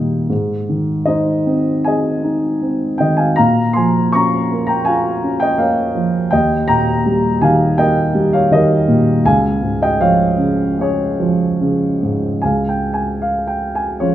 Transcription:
0.00 0.25 D#2 soft
0.00 0.29 A#2 soft
0.00 0.32 D#3 soft
0.00 0.25 G3 soft
0.00 0.25 A#3 soft
0.00 0.32 A#4 soft
0.00 0.33 D#5 medium
0.30 3.34 G#2 soft
0.69 2.20 D#3 soft
1.06 2.22 D#4 soft
1.06 1.82 C5 soft
1.06 1.86 D#5 medium
1.46 2.61 C4 soft
1.84 3.35 G#4 soft
1.84 2.97 D#5 soft
1.84 2.96 G#5 medium
2.24 3.35 D#4 soft
2.62 3.36 C4 soft
2.98 3.37 D#3 soft
2.98 3.18 D#5 soft
2.98 3.19 G5 medium
3.17 3.37 F5 soft
3.17 3.38 G#5 medium
3.36 6.29 A#2 soft
3.36 3.74 F5 medium
3.36 3.76 A#5 medium
3.73 5.19 F3 soft
3.73 4.11 G#5 medium
3.73 4.09 C6 medium
4.13 5.21 C#4 soft
4.13 4.65 A#5 medium
4.13 4.70 C#6 medium
4.52 5.57 A#3 soft
4.67 4.86 G5 soft
4.67 4.86 A#5 medium
4.85 6.29 F4 soft
4.85 5.38 F5 medium
4.85 5.42 G#5 medium
5.23 6.29 C#4 soft
5.40 5.59 D#5 soft
5.40 5.59 G5 medium
5.58 6.30 A#3 soft
5.58 6.29 C#5 soft
5.58 6.34 F5 medium
5.95 6.31 F3 soft
6.31 9.21 D#2 soft
6.31 6.67 D#5 medium
6.31 6.68 G5 medium
6.68 8.11 A#2 soft
6.68 7.38 G5 medium
6.68 7.43 A#5 medium
7.06 8.13 G3 soft
7.42 8.50 D#3 soft
7.42 7.77 F5 medium
7.42 7.79 G#5 medium
7.78 9.21 A#3 soft
7.78 8.30 D#5 medium
7.78 8.35 G5 medium
8.14 9.22 G3 soft
8.33 8.51 C#5 medium
8.33 8.52 F5 medium
8.51 9.23 D#3 soft
8.51 9.04 A#4 medium
8.51 9.03 D#5 medium
8.88 9.24 A#2 soft
9.25 12.38 C#2 medium
9.25 9.78 F5 medium
9.25 9.84 G#5 medium
9.63 11.16 G#2 soft
9.82 10.00 D#5 medium
9.82 10.02 G5 medium
10.00 11.18 F3 soft
10.00 10.76 C#5 medium
10.00 10.76 F5 medium
10.38 11.59 C#3 soft
10.79 12.38 G#3 soft
10.79 11.99 G#4 soft
10.79 11.99 C#5 medium
11.20 12.39 F3 soft
11.61 12.40 C#3 soft
12.03 12.41 G#2 soft
12.42 14.15 C#2 soft
12.42 13.20 F5 soft
12.42 12.69 G#5 medium
12.69 12.96 G5 medium
12.94 13.19 G#5 medium
13.22 13.50 F5 medium
13.47 13.75 G5 medium
13.75 14.00 G#5 medium
14.00 14.15 F3 soft
14.00 14.15 G#3 soft
14.00 14.15 C#4 soft
14.00 14.15 F4 soft
14.00 14.15 C#5 medium

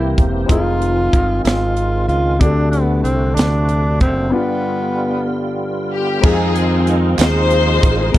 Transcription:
0.00 0.14 C2 medium
0.00 0.46 C3 medium
0.00 0.50 E3 medium
0.00 0.50 A#3 soft
0.00 0.45 C4 medium
0.00 0.46 C4 medium
0.00 0.18 E4 medium
0.00 0.49 E4 medium
0.00 0.50 G4 soft
0.00 0.50 G4 medium
0.00 0.50 A#4 medium
0.18 0.48 E1 medium
0.18 kick medium
0.18 closed hi-hat soft
0.46 1.10 F1 medium
0.46 2.37 D#3 medium
0.46 0.56 G3 soft
0.46 2.36 C4 medium
0.46 2.36 C4 soft
0.46 2.37 D#4 soft
0.46 2.37 F4 medium
0.46 2.38 F4 soft
0.46 1.42 F4 medium
0.46 kick loud
0.46 closed hi-hat medium
0.52 2.40 G#3 soft
0.52 2.39 G#4 medium
0.82 closed hi-hat medium
1.13 1.43 G1 medium
1.13 kick medium
1.13 closed hi-hat soft
1.44 2.05 G#1 medium
1.44 2.05 F4 medium
1.44 snare loud
1.44 closed hi-hat medium
1.77 closed hi-hat soft
2.08 2.38 C#2 medium
2.08 2.41 F4 medium
2.08 closed hi-hat soft
2.39 3.01 D2 loud
2.39 4.27 C3 soft
2.39 4.29 C3 medium
2.39 4.29 D3 medium
2.39 3.33 D3 medium
2.39 4.29 A3 soft
2.39 2.70 D4 medium
2.39 4.28 D4 medium
2.39 4.29 F#4 medium
2.39 4.29 F#4 soft
2.39 kick loud
2.39 closed hi-hat medium
2.45 4.31 A4 medium
2.71 3.02 B3 medium
2.71 closed hi-hat soft
3.03 3.34 C2 medium
3.03 3.36 C4 medium
3.03 closed hi-hat soft
3.35 4.02 D2 medium
3.35 4.00 D4 medium
3.35 closed hi-hat medium
3.39 snare loud
3.69 closed hi-hat soft
4.00 4.30 F#1 medium
4.00 4.34 C4 medium
4.00 kick medium
4.00 closed hi-hat soft
4.30 5.24 G2 medium
4.30 6.19 D3 soft
4.30 6.20 G3 medium
4.30 6.18 B3 medium
4.30 5.60 B3 medium
4.30 6.20 B3 medium
4.30 6.19 D4 medium
4.30 6.20 F4 medium
4.34 6.20 F4 soft
4.34 6.21 G4 medium
5.93 6.22 G4 medium
6.20 7.15 F2 loud
6.20 8.11 D#3 medium
6.20 8.10 F3 medium
6.20 8.09 G#3 medium
6.20 8.09 C4 medium
6.20 8.11 C4 medium
6.20 8.10 D#4 medium
6.20 8.10 F4 medium
6.20 kick loud
6.20 crash loud
6.24 8.11 G#3 medium
6.24 7.16 C4 medium
6.24 7.16 D#4 medium
6.24 8.11 F4 medium
6.24 6.88 G#4 medium
6.24 8.11 G#4 medium
6.56 closed hi-hat medium
6.87 closed hi-hat soft
7.18 7.78 D#2 medium
7.18 8.11 D#4 medium
7.18 8.11 G#4 medium
7.18 8.11 C5 loud
7.18 snare loud
7.18 clap medium
7.18 closed hi-hat medium
7.51 closed hi-hat medium
7.83 8.12 A1 medium
7.83 kick loud
7.83 closed hi-hat soft
8.12 8.18 A#1 loud
8.12 8.18 A#2 medium
8.12 8.18 D3 medium
8.12 8.18 F3 medium
8.12 8.18 G#3 medium
8.12 8.18 A#3 medium
8.12 8.18 C#4 soft
8.12 8.18 F4 medium
8.12 kick loud
8.12 closed hi-hat medium

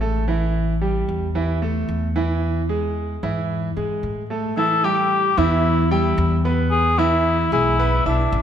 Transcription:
0.00 1.02 A1 medium
0.00 0.23 A3 medium
0.00 0.23 A4 medium
0.28 0.72 E3 medium
0.28 0.72 E4 medium
0.81 1.25 G3 medium
0.81 1.25 G4 medium
1.08 1.85 E2 medium
1.35 1.57 E3 medium
1.35 1.57 E4 medium
1.62 2.06 A3 medium
1.62 2.06 A4 medium
1.89 3.16 E2 medium
2.16 2.59 E3 medium
2.16 2.60 E4 medium
2.69 3.13 G#3 medium
2.69 3.13 G#4 medium
3.23 3.73 G#2 medium
3.23 3.67 E3 medium
3.23 3.67 E4 medium
3.76 4.01 G#2 medium
3.76 4.20 G#3 medium
3.76 4.21 G#4 medium
4.03 5.30 A2 medium
4.30 4.52 A3 medium
4.30 4.52 A4 medium
4.57 4.79 E3 medium
4.57 4.79 E4 medium
4.57 4.86 A4 loud
4.57 4.79 E5 medium
4.84 5.28 G3 medium
4.84 5.28 G4 medium
4.84 5.40 G4 loud
4.84 5.28 G5 medium
5.37 6.14 E2 loud
5.37 5.81 E3 medium
5.37 5.81 E4 medium
5.37 5.91 E4 loud
5.37 5.82 E5 medium
5.91 6.35 G3 medium
5.91 6.41 E4 medium
5.91 6.35 G4 medium
5.91 6.35 G5 medium
6.18 7.45 E2 loud
6.45 6.89 B3 medium
6.45 6.89 B4 medium
6.45 6.89 B5 medium
6.71 7.00 G#4 loud
6.98 7.42 E3 medium
6.98 7.52 E4 loud
6.98 7.42 E4 medium
6.98 7.42 E5 medium
7.52 8.02 B1 medium
7.52 7.74 G#3 medium
7.52 8.02 E4 loud
7.52 7.74 G#4 medium
7.52 7.74 G#5 medium
7.79 8.01 B3 medium
7.79 8.01 B4 medium
7.79 8.01 B5 medium
8.06 8.30 B1 medium
8.06 8.42 D4 medium
8.06 8.42 E4 medium
8.06 8.42 E5 medium
8.06 8.42 E6 medium
8.32 8.42 A1 loud

